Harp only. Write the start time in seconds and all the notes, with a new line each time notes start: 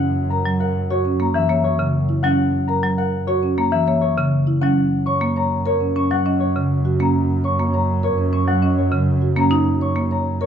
Already playing: C#5 E5 F#5 A#5
0.30 A#5
0.60 F#5
0.90 C#5
1.20 A#5
1.35 E5
1.64 C#5
2.23 F#5
2.67 A#5
2.98 F#5
3.27 C#5
3.58 A#5
3.72 E5
4.01 C#5
4.61 F#5
5.06 C#6
5.37 A#5
5.66 C#5
5.96 C#6
6.11 F#5
6.40 C#5
7.00 A#5
7.45 C#6
7.74 A#5
8.04 C#5
8.33 C#6
8.48 F#5
8.78 C#5
9.38 A#5
9.82 C#6
10.12 A#5
10.41 C#5